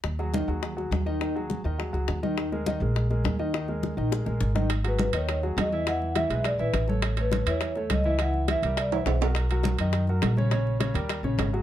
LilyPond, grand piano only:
\new Staff \with { instrumentName = "Grand piano" } { \time 4/4 \key gis \minor \tempo 4 = 206 r8 <fis fis' gis'>8 <dis dis' dis''>8 <fis fis' gis'>4 <fis fis' gis'>4 <dis dis' dis''>8 | <dis dis' dis''>8 <fis fis' gis'>4 <dis dis' dis''>8 <fis fis' gis'>8 <fis fis' gis'>4 <dis dis' dis''>8~ | <dis dis' dis''>8 <gis gis' ais'>8 <dis dis' dis''>8 <gis gis' ais'>4 <gis gis' ais'>4 <dis dis' dis''>8 | <dis dis' dis''>8 <gis gis' ais'>4 <dis dis' dis''>8 <gis gis' ais'>8 <gis gis' ais'>4 <dis dis' dis''>8 |
r8 <fis fis' gis'>4 <dis dis' dis''>4 <fis fis' gis'>4 <e e' e''>8 | <e e' e''>4 <e e' e''>8 <gis gis' b'>4 <e e' e''>4 <a a' cis''>8~ | <a a' cis''>8 <a a' cis''>4 <e e' e''>4 <a a' cis''>4 <e e' e''>8 | <e e' e''>4 <e e' e''>8 <g g' ais'>4 <e e' e''>4 <fis fis' bes'>8~ |
<fis fis' bes'>8 <fis fis' ais'>4 <dis dis' dis''>4 <fis fis' ais'>4 <cis cis' cis''>8 | <cis cis' cis''>4 <cis cis' cis''>8 <g g' ais'>4 <cis cis' cis''>4 <fis fis' gis'>8 | }